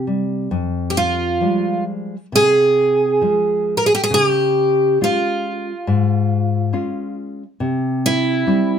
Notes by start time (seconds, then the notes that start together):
Already playing: C3
0.07 G3
0.51 F2
0.90 G4
0.97 F4
1.41 F3 G3 G#3
2.32 C3 G#4
3.21 F3 G#3
3.77 A#4
3.86 G#4
3.95 G4
4.04 G#4
4.11 C#3 G4
5.01 G#3 C#4 F4
5.87 G#2
6.73 G#3 C#4 F4
7.60 C3
8.06 E4
8.47 G3 C4 E4